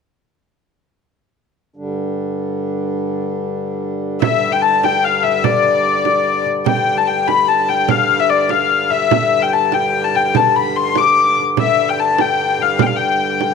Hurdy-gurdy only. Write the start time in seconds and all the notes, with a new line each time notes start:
4.21 E5
4.52 G5
4.62 A5
4.84 G5
5.04 F5
5.23 E5
5.44 D5
6.67 G5
6.98 A5
7.07 G5
7.28 B5
7.48 A5
7.69 G5
7.90 F5
8.20 E5
8.30 D5
8.51 F5
8.91 E5
9.12 E5
9.42 G5
9.53 A5
9.74 G5
10.04 A5
10.16 G5
10.36 A5
10.56 B5
10.76 C6
10.98 D6
11.59 E5
11.89 G5
12.00 A5
12.20 G5
12.62 F5
12.82 G5
12.87 F5
12.96 G5